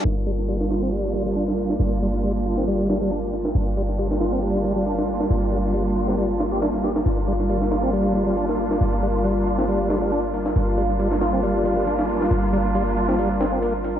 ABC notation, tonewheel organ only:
X:1
M:4/4
L:1/16
Q:"Swing 16ths" 1/4=137
K:Gm
V:1 name="Tonewheel organ" clef=bass
z2 G, z G, z F C G,2 G, G, D z3 | z2 G, z G, z F C G,2 G, G, D z3 | z2 G, z G, z F C G,2 G, G, D z3 | z2 G, z G, z F C G, z F G D z G z |
z2 G, z G, z F C G,2 G, G, D z3 | z2 G, z G, z F C G,2 G, G, D z3 | z2 G, z G, z F C G,2 G, G, D z3 | z2 G, z G, z F C G, z C C B, z2 D |]